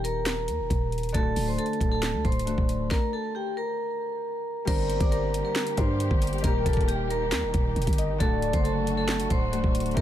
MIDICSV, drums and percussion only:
0, 0, Header, 1, 2, 480
1, 0, Start_track
1, 0, Key_signature, -2, "minor"
1, 0, Tempo, 441176
1, 1246, Time_signature, 4, 2, 24, 8
1, 10894, End_track
2, 0, Start_track
2, 0, Title_t, "Drums"
2, 51, Note_on_c, 9, 42, 68
2, 160, Note_off_c, 9, 42, 0
2, 285, Note_on_c, 9, 38, 122
2, 290, Note_on_c, 9, 39, 98
2, 291, Note_on_c, 9, 42, 84
2, 394, Note_off_c, 9, 38, 0
2, 399, Note_off_c, 9, 39, 0
2, 400, Note_off_c, 9, 42, 0
2, 522, Note_on_c, 9, 42, 76
2, 631, Note_off_c, 9, 42, 0
2, 765, Note_on_c, 9, 36, 91
2, 769, Note_on_c, 9, 42, 85
2, 874, Note_off_c, 9, 36, 0
2, 878, Note_off_c, 9, 42, 0
2, 1005, Note_on_c, 9, 42, 56
2, 1065, Note_off_c, 9, 42, 0
2, 1065, Note_on_c, 9, 42, 57
2, 1125, Note_off_c, 9, 42, 0
2, 1125, Note_on_c, 9, 42, 57
2, 1185, Note_off_c, 9, 42, 0
2, 1185, Note_on_c, 9, 42, 58
2, 1245, Note_on_c, 9, 36, 106
2, 1246, Note_off_c, 9, 42, 0
2, 1246, Note_on_c, 9, 42, 81
2, 1354, Note_off_c, 9, 36, 0
2, 1354, Note_off_c, 9, 42, 0
2, 1483, Note_on_c, 9, 46, 89
2, 1592, Note_off_c, 9, 46, 0
2, 1725, Note_on_c, 9, 42, 62
2, 1805, Note_off_c, 9, 42, 0
2, 1805, Note_on_c, 9, 42, 50
2, 1885, Note_off_c, 9, 42, 0
2, 1885, Note_on_c, 9, 42, 37
2, 1965, Note_on_c, 9, 36, 98
2, 1972, Note_off_c, 9, 42, 0
2, 1972, Note_on_c, 9, 42, 71
2, 2073, Note_off_c, 9, 36, 0
2, 2080, Note_off_c, 9, 42, 0
2, 2205, Note_on_c, 9, 38, 127
2, 2210, Note_on_c, 9, 39, 102
2, 2211, Note_on_c, 9, 42, 88
2, 2314, Note_off_c, 9, 38, 0
2, 2319, Note_off_c, 9, 39, 0
2, 2320, Note_off_c, 9, 42, 0
2, 2445, Note_on_c, 9, 36, 93
2, 2445, Note_on_c, 9, 42, 43
2, 2526, Note_off_c, 9, 42, 0
2, 2526, Note_on_c, 9, 42, 56
2, 2554, Note_off_c, 9, 36, 0
2, 2605, Note_off_c, 9, 42, 0
2, 2605, Note_on_c, 9, 42, 73
2, 2689, Note_off_c, 9, 42, 0
2, 2689, Note_on_c, 9, 42, 87
2, 2798, Note_off_c, 9, 42, 0
2, 2806, Note_on_c, 9, 36, 94
2, 2914, Note_off_c, 9, 36, 0
2, 2927, Note_on_c, 9, 42, 74
2, 3036, Note_off_c, 9, 42, 0
2, 3165, Note_on_c, 9, 36, 112
2, 3165, Note_on_c, 9, 38, 89
2, 3274, Note_off_c, 9, 36, 0
2, 3274, Note_off_c, 9, 38, 0
2, 5086, Note_on_c, 9, 36, 107
2, 5086, Note_on_c, 9, 42, 84
2, 5086, Note_on_c, 9, 49, 103
2, 5194, Note_off_c, 9, 36, 0
2, 5195, Note_off_c, 9, 42, 0
2, 5195, Note_off_c, 9, 49, 0
2, 5326, Note_on_c, 9, 42, 73
2, 5435, Note_off_c, 9, 42, 0
2, 5446, Note_on_c, 9, 36, 113
2, 5446, Note_on_c, 9, 42, 70
2, 5554, Note_off_c, 9, 36, 0
2, 5554, Note_off_c, 9, 42, 0
2, 5572, Note_on_c, 9, 42, 66
2, 5681, Note_off_c, 9, 42, 0
2, 5812, Note_on_c, 9, 42, 76
2, 5921, Note_off_c, 9, 42, 0
2, 6045, Note_on_c, 9, 38, 127
2, 6045, Note_on_c, 9, 42, 51
2, 6050, Note_on_c, 9, 39, 104
2, 6154, Note_off_c, 9, 38, 0
2, 6154, Note_off_c, 9, 42, 0
2, 6159, Note_off_c, 9, 39, 0
2, 6165, Note_on_c, 9, 42, 83
2, 6274, Note_off_c, 9, 42, 0
2, 6282, Note_on_c, 9, 42, 72
2, 6285, Note_on_c, 9, 36, 97
2, 6391, Note_off_c, 9, 42, 0
2, 6394, Note_off_c, 9, 36, 0
2, 6529, Note_on_c, 9, 42, 85
2, 6638, Note_off_c, 9, 42, 0
2, 6646, Note_on_c, 9, 36, 103
2, 6754, Note_off_c, 9, 36, 0
2, 6765, Note_on_c, 9, 42, 71
2, 6824, Note_off_c, 9, 42, 0
2, 6824, Note_on_c, 9, 42, 61
2, 6885, Note_off_c, 9, 42, 0
2, 6885, Note_on_c, 9, 42, 54
2, 6945, Note_off_c, 9, 42, 0
2, 6945, Note_on_c, 9, 42, 41
2, 7005, Note_off_c, 9, 42, 0
2, 7005, Note_on_c, 9, 36, 106
2, 7005, Note_on_c, 9, 42, 81
2, 7114, Note_off_c, 9, 36, 0
2, 7114, Note_off_c, 9, 42, 0
2, 7245, Note_on_c, 9, 36, 97
2, 7245, Note_on_c, 9, 42, 85
2, 7325, Note_off_c, 9, 42, 0
2, 7325, Note_on_c, 9, 42, 69
2, 7354, Note_off_c, 9, 36, 0
2, 7365, Note_on_c, 9, 36, 113
2, 7404, Note_off_c, 9, 42, 0
2, 7404, Note_on_c, 9, 42, 50
2, 7474, Note_off_c, 9, 36, 0
2, 7491, Note_off_c, 9, 42, 0
2, 7491, Note_on_c, 9, 42, 69
2, 7599, Note_off_c, 9, 42, 0
2, 7731, Note_on_c, 9, 42, 72
2, 7840, Note_off_c, 9, 42, 0
2, 7964, Note_on_c, 9, 38, 127
2, 7969, Note_on_c, 9, 39, 102
2, 7970, Note_on_c, 9, 42, 83
2, 8073, Note_off_c, 9, 38, 0
2, 8078, Note_off_c, 9, 39, 0
2, 8079, Note_off_c, 9, 42, 0
2, 8201, Note_on_c, 9, 42, 72
2, 8205, Note_on_c, 9, 36, 101
2, 8310, Note_off_c, 9, 42, 0
2, 8314, Note_off_c, 9, 36, 0
2, 8445, Note_on_c, 9, 42, 52
2, 8505, Note_off_c, 9, 42, 0
2, 8505, Note_on_c, 9, 42, 64
2, 8565, Note_off_c, 9, 42, 0
2, 8565, Note_on_c, 9, 42, 75
2, 8566, Note_on_c, 9, 36, 100
2, 8625, Note_off_c, 9, 42, 0
2, 8625, Note_on_c, 9, 42, 84
2, 8674, Note_off_c, 9, 36, 0
2, 8686, Note_off_c, 9, 42, 0
2, 8686, Note_on_c, 9, 42, 76
2, 8795, Note_off_c, 9, 42, 0
2, 8925, Note_on_c, 9, 36, 109
2, 8925, Note_on_c, 9, 42, 83
2, 9034, Note_off_c, 9, 36, 0
2, 9034, Note_off_c, 9, 42, 0
2, 9165, Note_on_c, 9, 42, 72
2, 9274, Note_off_c, 9, 42, 0
2, 9285, Note_on_c, 9, 36, 112
2, 9285, Note_on_c, 9, 42, 70
2, 9394, Note_off_c, 9, 36, 0
2, 9394, Note_off_c, 9, 42, 0
2, 9411, Note_on_c, 9, 42, 68
2, 9520, Note_off_c, 9, 42, 0
2, 9652, Note_on_c, 9, 42, 76
2, 9761, Note_off_c, 9, 42, 0
2, 9884, Note_on_c, 9, 38, 127
2, 9885, Note_on_c, 9, 42, 51
2, 9890, Note_on_c, 9, 39, 102
2, 9993, Note_off_c, 9, 38, 0
2, 9994, Note_off_c, 9, 42, 0
2, 9999, Note_off_c, 9, 39, 0
2, 10005, Note_on_c, 9, 42, 84
2, 10114, Note_off_c, 9, 42, 0
2, 10122, Note_on_c, 9, 42, 72
2, 10125, Note_on_c, 9, 36, 99
2, 10231, Note_off_c, 9, 42, 0
2, 10234, Note_off_c, 9, 36, 0
2, 10369, Note_on_c, 9, 42, 88
2, 10478, Note_off_c, 9, 42, 0
2, 10486, Note_on_c, 9, 36, 102
2, 10595, Note_off_c, 9, 36, 0
2, 10606, Note_on_c, 9, 42, 73
2, 10666, Note_off_c, 9, 42, 0
2, 10666, Note_on_c, 9, 42, 61
2, 10726, Note_off_c, 9, 42, 0
2, 10726, Note_on_c, 9, 42, 51
2, 10786, Note_off_c, 9, 42, 0
2, 10786, Note_on_c, 9, 42, 41
2, 10845, Note_on_c, 9, 36, 108
2, 10846, Note_off_c, 9, 42, 0
2, 10846, Note_on_c, 9, 42, 80
2, 10894, Note_off_c, 9, 36, 0
2, 10894, Note_off_c, 9, 42, 0
2, 10894, End_track
0, 0, End_of_file